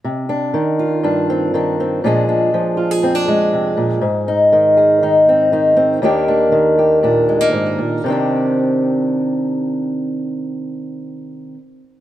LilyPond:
\new Staff \with { instrumentName = "Steel-string acoustic guitar" } { \time 4/4 \key c \minor \tempo 4 = 120 << { r8 d'4 f'8 d'8 c'8 d'8 c'8 | <f aes d' aes'>8 d'4 f'16 aes'16 c'16 d'16 aes4.~ | aes8 ees'4 aes'8 ees'8 c'8 ees'8 c'8 | <ees bes d' g'>8 d'4 g'8 d'8 aes16 bes4~ bes16 |
<ees c' d' g'>1~ | <ees c' d' g'>1 | } \\ { c4 ees4 g,4 ees4 | bes,4 f4 f,4 c8 bes,8 | aes,4 ees4 ees4 ees4 | ees,4 ees4 bes,4 aes,8 bes,8 |
c1~ | c1 | } >> }